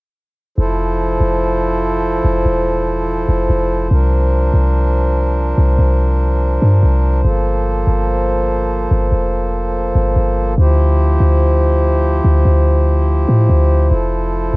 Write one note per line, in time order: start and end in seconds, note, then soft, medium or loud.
0.58 1.18 F1 loud
0.58 10.54 F3 medium
0.58 3.88 E4 medium
0.58 3.88 A4 medium
0.58 10.54 C5 medium
1.20 2.21 F1 loud
2.25 2.45 F1 loud
2.45 3.25 E1 loud
3.29 3.49 F1 loud
3.50 3.90 F1 loud
3.91 4.51 C2 loud
3.91 7.21 D4 medium
3.91 7.21 A#4 medium
4.54 5.54 C2 medium
5.58 5.78 C2 loud
5.79 6.59 C2 loud
6.62 6.82 G2 loud
6.83 7.23 C2 loud
7.25 7.85 G1 loud
7.25 10.55 A#3 medium
7.25 10.55 A4 medium
7.87 8.87 G1 loud
8.91 9.11 G1 loud
9.12 9.92 F1 loud
9.95 10.15 G1 loud
10.16 10.56 G1 loud
10.58 11.18 D2 loud
10.58 14.56 F3 medium
10.58 14.56 E4 medium
10.58 13.88 G4 medium
10.58 14.56 C5 medium
11.20 12.21 D2 medium
12.25 12.45 D2 loud
12.45 13.25 D2 loud
13.29 13.49 A2 loud
13.49 13.89 D2 loud
13.91 14.51 F1 loud
13.91 14.56 A4 medium